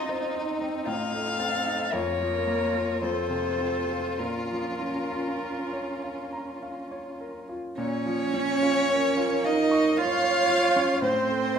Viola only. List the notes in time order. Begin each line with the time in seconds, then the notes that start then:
Already playing: C4
1.92 A#3
3.01 A3
4.18 C#4
8.90 A#4
9.99 C#5
11.03 C5
11.55 C5